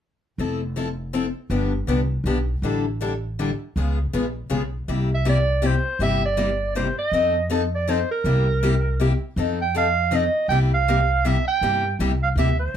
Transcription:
0.38 F1 F3 C4 E4 A4
0.76 F3 C4 E4 A4
1.13 F3 C4 E4 A4
1.50 G1 D3 F3 B3 D4 G4
1.87 C2 D3 F3 B3 D4 G4
2.24 B1 D3 F3 B3 D4 G4
2.62 A1 D3 G3 D4 E4 A4
3.01 D3 G3 D4 E4 A4
3.39 D3 G3 D4 E4 A4
3.76 C#2 C#3 G#3 B3 F4 G#4
4.13 A#1 C#3 G#3 B3 F4 G#4
4.50 B1 C#3 G#3 B3 F4 G#4
4.88 C2 C3 G3 A#3 E4 G4
5.14 E5
5.25 C3 G3 A#3 E4 G4 D5
5.62 C3 G3 A#3 E4 G4
5.66 C5
5.99 G1 C3 G3 A#3 E4 G4 E5
6.25 D5
6.37 C3 G3 A#3 E4 G4
6.75 C3 G3 A#3 E4 G4 C5
6.99 D#5
7.12 F2 F3 C4 D#4 A4
7.50 F3 C4 D#4 A4
7.75 D5
7.88 F3 C4 D#4 A4 C5
8.11 A#4
8.24 C2 C3 G3 A#3 E4 G4
8.63 C3 G3 A#3 E4 G4
9.00 C3 G3 A#3 E4 G4
9.36 F2 F3 C4 D#4 A4
9.62 G5
9.75 F3 C4 D#4 A4 F5
10.11 F3 C4 D#4 A4
10.15 D#5
10.48 C2 C3 G3 A#3 E4 G4 G5
10.74 F5
10.88 C3 G3 A#3 E4 G4
11.25 C3 G3 A#3 E4 G4 E5
11.48 G5
11.61 G2 C3 G3 A#3 E4 G4
11.99 C2 C3 G3 A#3 E4 G4
12.23 F5
12.36 D2 C3 G3 A#3 E4 G4 E5
12.59 C5

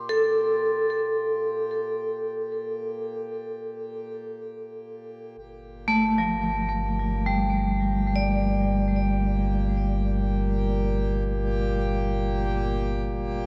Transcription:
Already playing: A#2 G4 C6 D6
0.09 A4
5.37 G1 A#2 G4
5.88 A3
6.18 F3
7.26 G3
8.15 D5

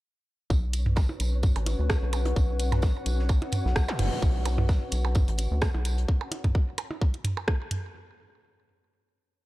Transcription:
0.50 B1 C#4 F#4 C#5, kick, tambourine, percussion blips
0.65 B4
0.73 closed hi-hat, tambourine
0.86 mid tom
0.96 kick, snare, tambourine, percussion blips
1.09 percussion blips
1.20 B1, closed hi-hat, tambourine
1.38 F#5
1.43 kick, mid tom, tambourine
1.56 A1, closed hi-hat, percussion blips
1.66 closed hi-hat, tambourine, percussion blips
1.79 D2
1.90 kick, cross-stick, snare, tambourine
2.02 B1
2.13 closed hi-hat, tambourine, percussion blips
2.25 closed hi-hat, percussion blips
2.36 B1, kick, tambourine
2.59 closed hi-hat, tambourine
2.72 snare, closed hi-hat, mid tom, percussion blips
2.82 kick, snare, tambourine, percussion blips
3.06 B1, closed hi-hat, tambourine
3.19 snare
3.29 kick, tambourine, percussion blips
3.42 closed hi-hat, percussion blips
3.52 closed hi-hat, mid tom, tambourine
3.65 B1, snare
3.76 B1, kick, cross-stick, snare, tambourine
3.88 snare, zap, percussion blips
3.99 F#1, closed hi-hat, mid tom, open hi-hat, percussion blips
4.12 snare
4.22 B1, kick, tambourine
4.45 closed hi-hat, tambourine, percussion blips
4.58 mid tom, percussion blips
4.69 kick, snare, tambourine
4.92 B1, closed hi-hat, tambourine
5.05 percussion blips
5.15 kick, mid tom, tambourine, percussion blips
5.28 A1, closed hi-hat
5.38 closed hi-hat, tambourine
5.51 D2
5.61 kick, cross-stick, snare, tambourine, percussion blips
5.74 B1, percussion blips
5.85 closed hi-hat, tambourine
5.98 closed hi-hat
6.08 kick
6.21 percussion blips
6.32 closed hi-hat, percussion blips
6.44 kick, closed hi-hat, mid tom
6.55 kick
6.78 closed hi-hat, percussion blips
6.91 percussion blips
7.01 kick
7.14 closed hi-hat
7.24 closed hi-hat, mid tom
7.37 percussion blips
7.48 kick, cross-stick, percussion blips
7.71 closed hi-hat, mid tom

